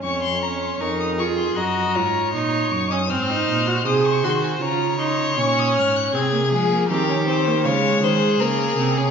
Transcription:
0.03 cello F2, viola C#4, violin C#5 C#6
0.23 violin C6
0.42 viola C#4, violin A#5
0.62 violin C6
0.80 cello F2, viola D#4, violin A#4 C#6
1.00 violin D#6
1.18 viola F4, violin G#4 C#6
1.38 violin C6
1.57 cello F#2, viola F#4, violin D#5 A#5
1.95 cello G#2, viola F4, violin C#5
2.33 cello A#2, viola D#4, violin C6
2.71 cello F#2, violin C#6
2.91 viola C#4, violin D#6
3.09 cello G#2, viola C4, violin C5 F6
3.30 viola D#4
3.48 cello A#2
3.67 viola F#4
3.85 cello C3, viola G#4, violin C5 D#6
4.05 violin C#6
4.24 cello D#3, viola F#4, violin C6
4.43 violin G#5
4.61 cello C#3, viola F4, violin C#5 A#5
5.00 viola D#4, violin C6
5.38 cello A#2, viola C#4, violin C#6
5.59 violin D#6
5.77 cello G#2, violin F6
5.96 violin F#6
6.14 cello C3, viola C4, violin G#4 G#6
6.33 viola A#3
6.52 cello F3, viola G#3, violin G#4
6.71 viola A#3
6.89 cello D#3, viola C4, violin G4 A#4
7.08 viola C#4
7.27 viola C4, violin C5
7.47 viola A#3
7.65 cello C#3, viola G#3, violin F4 C#5
8.03 cello D#3, violin G#4 C5
8.40 cello C#3, viola A#3, violin A#4
8.79 cello C3, viola C4
8.97 viola C#4, violin G#4

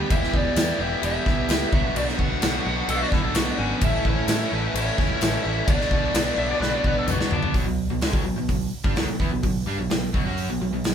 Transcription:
0.09 picked electric bass E1, overdriven electric guitar E2 B2 E3 G3 B3 E4 G4, tonewheel organ B3 G4 E5, lead electric guitar E5, kick, crash
0.23 snare
0.33 picked electric bass E1, overdriven electric guitar E3 G3 B3 E4 G4, lead electric guitar D5, kick
0.56 picked electric bass E2, overdriven electric guitar E3 G3 B3 E4 G4, snare, tambourine, crash
0.78 picked electric bass E1, overdriven electric guitar E3 G3 B3 E4 G4, lead electric guitar E5
1.02 picked electric bass E1, overdriven electric guitar E2 B2 E3 G3 B3 E4 G4, lead electric guitar E5, crash
1.25 picked electric bass B1, overdriven electric guitar E3 G3 B3 E4 G4, kick, snare
1.49 picked electric bass C#2, overdriven electric guitar E3 G3 B3 E4 G4, snare, tambourine, crash
1.72 picked electric bass B1, overdriven electric guitar B2 F#3 B3 D4 F#4, tonewheel organ B3 F#4 D5, kick
1.95 picked electric bass B1, overdriven electric guitar B2 F#3 B3 D4 F#4, lead electric guitar D5, crash
2.08 snare
2.18 picked electric bass B1, overdriven electric guitar B3 D4 F#4, lead electric guitar F#5, kick
2.42 picked electric bass B1, overdriven electric guitar B2 F#3 B3 D4 F#4, snare, tambourine, crash
2.65 picked electric bass B1, overdriven electric guitar B3 D4 F#4
2.88 picked electric bass B1, overdriven electric guitar B2 F#3 B3 D4 F#4, electric slide guitar A4, crash
3.03 electric slide guitar F#4
3.12 picked electric bass B1, overdriven electric guitar B2 F#3 B3 D4 F#4, electric slide guitar E4, kick, snare
3.24 electric slide guitar A4
3.34 picked electric bass B1, overdriven electric guitar F#3 B3 D4 F#4, electric slide guitar F#4, snare, tambourine, crash
3.58 picked electric bass G#1, overdriven electric guitar B3 D4 F#4, electric slide guitar C#4
3.80 picked electric bass A1, overdriven electric guitar A2 E3 A3 C#4 E4, tonewheel organ A3 E4 C#5, kick, crash
3.84 overdriven electric guitar A4, lead electric guitar E5
4.04 picked electric bass A1, overdriven electric guitar A3 C#4 E4 A4, lead electric guitar C#5, kick
4.28 picked electric bass A2, overdriven electric guitar A2 E3 A3 C#4 E4 A4, snare, tambourine, crash
4.52 picked electric bass A1, overdriven electric guitar A3 C#4 E4 A4, lead electric guitar B4
4.74 picked electric bass A1, overdriven electric guitar A2 E3 A3 C#4 E4 A4, lead electric guitar C#5, crash
4.98 picked electric bass E1, overdriven electric guitar A2 E3 A3 C#4 E4 A4, kick, snare
5.21 picked electric bass A1, overdriven electric guitar E3 A3 C#4 E4 A4, snare, tambourine, crash
5.44 picked electric bass A1, overdriven electric guitar A3 C#4 E4, lead electric guitar E5
5.67 picked electric bass B1, overdriven electric guitar B2 F#3 B3 D4 F#4, tonewheel organ B3 F#4 D5, lead electric guitar D5, kick, crash
5.81 snare
5.91 picked electric bass B1, overdriven electric guitar F#3 B3 D4 F#4, kick
6.14 picked electric bass B1, overdriven electric guitar B2 F#3 B3 D4 F#4, snare, tambourine, crash
6.37 picked electric bass B1, overdriven electric guitar F#3 B3 D4 F#4, electric slide guitar E5
6.51 electric slide guitar D5
6.60 picked electric bass B1, overdriven electric guitar B2 F#3 B3 D4 F#4, electric slide guitar B4, snare
6.76 electric slide guitar D5
6.84 picked electric bass B1, overdriven electric guitar B2 F#3 B3 D4 F#4, electric slide guitar B4, kick
6.99 electric slide guitar A4
7.07 picked electric bass B1, overdriven electric guitar B2 F#3 B3 D4 F#4, electric slide guitar F#4, mid tom, tambourine
7.21 snare
7.30 picked electric bass F#2, overdriven electric guitar F#3 B3 D4, electric slide guitar D4, floor tom
7.43 floor tom
7.54 picked electric bass B1, overdriven electric guitar B2 F#3, kick, open hi-hat
7.66 picked electric bass B1, overdriven electric guitar B2 F#3
7.90 picked electric bass B1, overdriven electric guitar B2 F#3
8.01 picked electric bass C#2, overdriven electric guitar C#3 G#3, snare, open hi-hat
8.13 picked electric bass B1, overdriven electric guitar B2 F#3, kick
8.25 picked electric bass B1, overdriven electric guitar B2 F#3
8.36 picked electric bass B1, overdriven electric guitar B2 F#3
8.48 picked electric bass B1, overdriven electric guitar B2 F#3, kick, open hi-hat
8.84 picked electric bass G2, overdriven electric guitar G3 D4, kick
8.96 picked electric bass B1, overdriven electric guitar B2 F#3, snare, open hi-hat
9.07 picked electric bass B1, overdriven electric guitar B2 F#3
9.19 picked electric bass E2, overdriven electric guitar E3 B3, kick
9.32 picked electric bass B1, overdriven electric guitar B2 F#3
9.43 picked electric bass B1, overdriven electric guitar B2 F#3, kick, open hi-hat
9.66 picked electric bass G2, overdriven electric guitar G3 D4
9.78 picked electric bass B1, overdriven electric guitar B2 F#3
9.90 picked electric bass B1, overdriven electric guitar B2 F#3, snare, open hi-hat
10.14 picked electric bass B1, overdriven electric guitar B2 F#3, kick
10.24 picked electric bass F#2, overdriven electric guitar F#3 C#4 F#4
10.38 open hi-hat
10.48 picked electric bass B1, overdriven electric guitar B2 F#3
10.60 picked electric bass B1, overdriven electric guitar B2 F#3
10.71 picked electric bass B1, overdriven electric guitar B2 F#3
10.83 picked electric bass B1, overdriven electric guitar B2 F#3, snare, open hi-hat

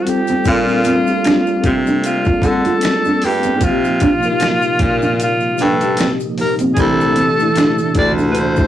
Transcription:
Already playing: tonewheel organ F3 D#4 G4 A4, tine electric piano G3 C4 F4 C5
0.03 tine electric piano G3 C4, tenor saxophone F#4, closed hi-hat
0.07 tine electric piano F4 A4, tenor saxophone G4, muted nylon-string guitar stroke, maracas
0.27 nylon-string guitar C4, closed hi-hat, maracas
0.44 baritone saxophone A#2, tine electric piano G3 C4 F4 A4, tonewheel organ A3 A#3 D4, kick, closed hi-hat, maracas
0.49 tenor saxophone F4
0.69 maracas
0.84 nylon-string guitar C4, closed hi-hat, maracas
1.05 tine electric piano G3 C4 F4 G4, maracas
1.16 tine electric piano A4
1.24 nylon-string guitar D4, finger snap, snare, closed hi-hat, maracas
1.27 finger snap
1.47 maracas
1.64 baritone saxophone C3, muted nylon-string guitar stroke, kick, closed hi-hat
1.86 nylon-string guitar D4, maracas
2.04 tenor saxophone F4, closed hi-hat, maracas
2.25 nylon-string guitar F4, kick, maracas
2.42 baritone saxophone D3, tine electric piano G3 C4 F4 G#4, muted nylon-string guitar stroke, kick, closed hi-hat, maracas
2.46 tenor saxophone A4
2.52 tine electric piano A4
2.65 nylon-string guitar F4, closed hi-hat, maracas
2.81 finger snap, snare, closed hi-hat, maracas
2.85 finger snap
3.05 nylon-string guitar D4, maracas
3.22 baritone saxophone G2, tenor saxophone G4, muted nylon-string guitar stroke, open hi-hat, maracas
3.43 nylon-string guitar C4, closed hi-hat, maracas
3.60 tonewheel organ A#2 C3 G3 D#4, baritone saxophone C3, tine electric piano F3 A#3 D#4, tenor saxophone F4, kick, closed hi-hat, maracas
3.64 tine electric piano G4
3.85 maracas
4.00 nylon-string guitar D4, kick, closed hi-hat, maracas
4.22 tine electric piano F3 A#3 D#4 A#4, maracas
4.40 nylon-string guitar D#4, finger snap, snare, closed hi-hat, maracas
4.43 finger snap
4.62 maracas
4.79 baritone saxophone A#2, muted nylon-string guitar stroke, kick, closed hi-hat
5.02 nylon-string guitar D#4, maracas
5.20 tenor saxophone F4, closed hi-hat, maracas
5.40 maracas
5.57 baritone saxophone G2, tine electric piano F3 A#3 D#4 G4, nylon-string guitar D4, closed hi-hat, maracas
5.63 tenor saxophone A4
5.81 closed hi-hat, maracas
5.97 nylon-string guitar C4, finger snap, snare, closed hi-hat, maracas
6.01 finger snap
6.20 maracas
6.37 tine electric piano F3 A#3 D#4 G4, tenor saxophone A#4, muted nylon-string guitar stroke, open hi-hat, maracas
6.59 nylon-string guitar C4, closed hi-hat, maracas
6.74 baritone saxophone C2, tonewheel organ C3 D4 E4 A4, tine electric piano E3 A3 D4, tenor saxophone G#4, kick, closed hi-hat, maracas
6.80 tine electric piano G4, tenor saxophone A4
7.01 maracas
7.16 nylon-string guitar C4, closed hi-hat, maracas
7.37 tine electric piano E3 A3 D4 E4, maracas
7.56 nylon-string guitar D4, finger snap, snare, closed hi-hat, maracas
7.78 maracas
7.95 baritone saxophone D2, tenor saxophone D5, muted nylon-string guitar stroke, kick, closed hi-hat
8.18 nylon-string guitar D4, maracas
8.31 tenor saxophone B4, closed hi-hat
8.36 tenor saxophone C5, maracas
8.56 nylon-string guitar E4, kick, maracas

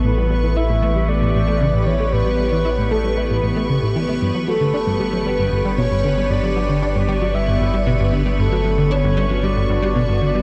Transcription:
Already playing: sub bass A1, ambient pad E3 B3 B4, synth texture C#6
0.04 analog synth bass A2, ambient pad G4, soft synth lead B4
0.17 analog synth bass G3
0.30 analog synth bass G3
0.43 analog synth bass E3
0.56 analog synth bass E4, soft synth lead E5
0.69 analog synth bass A2
0.82 analog synth bass A3
0.96 analog synth bass G3
1.08 analog synth bass A3, soft synth lead D5
1.22 analog synth bass A2
1.35 analog synth bass A2
1.48 analog synth bass A3
1.61 analog synth bass C#3
1.74 analog synth bass A2
1.86 analog synth bass E3, soft synth lead C#5
2.00 analog synth bass A3
2.13 analog synth bass A2, soft synth lead B4
2.26 analog synth bass G3
2.39 analog synth bass G3
2.52 analog synth bass E3
2.65 analog synth bass E4
2.78 analog synth bass A2
2.91 analog synth bass A3, soft synth lead A4
3.04 analog synth bass G3
3.17 analog synth bass A3, soft synth lead B4
3.30 analog synth bass A2
3.43 analog synth bass A2
3.56 analog synth bass A3
3.69 analog synth bass C#3
3.82 analog synth bass A2
3.95 analog synth bass E3
4.08 analog synth bass A3
4.21 sub bass G1, analog synth bass G2, ambient pad D3 G4
4.35 analog synth bass F#3
4.47 analog synth bass F#3, soft synth lead A4
4.61 analog synth bass D3
4.74 analog synth bass D4
4.87 analog synth bass G2
5.00 analog synth bass G3
5.13 analog synth bass F#3
5.26 analog synth bass G3, soft synth lead B4
5.39 analog synth bass G2
5.52 analog synth bass G2
5.65 analog synth bass G3
5.78 analog synth bass B2, soft synth lead C#5
5.91 analog synth bass G2
6.04 analog synth bass D3
6.17 analog synth bass G3
6.30 analog synth bass G2, soft synth lead D5
6.43 analog synth bass F#3
6.56 analog synth bass F#3
6.69 analog synth bass D3
6.82 analog synth bass D4
6.95 analog synth bass G2
7.08 analog synth bass G3
7.21 analog synth bass F#3
7.35 analog synth bass G3, soft synth lead E5
7.48 analog synth bass G2
7.61 analog synth bass G2
7.74 analog synth bass G3
7.87 analog synth bass B2
8.00 analog synth bass G2
8.13 analog synth bass D3
8.26 analog synth bass G3
8.39 analog synth bass G2, ambient pad F#4, soft synth lead A4
8.52 analog synth bass F#3
8.65 analog synth bass F#3
8.78 analog synth bass D3
8.91 analog synth bass D4, soft synth lead C#5
9.04 analog synth bass G2
9.17 analog synth bass G3
9.30 analog synth bass F#3
9.43 analog synth bass G3, soft synth lead D5
9.56 analog synth bass G2
9.69 analog synth bass G2
9.82 analog synth bass G3
9.95 analog synth bass B2
10.09 analog synth bass G2
10.22 analog synth bass D3
10.35 analog synth bass G3

